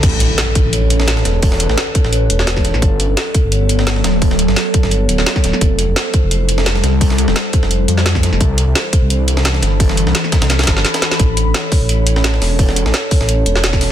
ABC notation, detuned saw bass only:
X:1
M:4/4
L:1/16
Q:"Swing 16ths" 1/4=172
K:A
V:1 name="Detuned saw bass" clef=bass
A,,,3 A,,, z3 A,,,6- A,,, E,,,2- | E,,,3 A,,, z3 A,,,3 E,,,4- E,,, A,,, | =G,,,3 G,,, z3 G,,,6- G,,, D,,,2- | D,,,3 =G,,, z3 G,,,3 D,,, D,,, z2 D,,, z |
=F,,,3 F,,, z3 F,,,6- F,,, =C,,2- | =C,,3 =F,,, z3 F,,,3 =F,,4- F,, F,,, | =C,,3 C,, z3 C,,6- C,, =G,,,2- | =G,,,3 =C,, z3 C,,3 G,,,2 z4 |
A,,,3 A,,, z3 A,,,6- A,,, E,,,2- | E,,,3 A,,, z3 A,,,3 E,,,4- E,,, z |]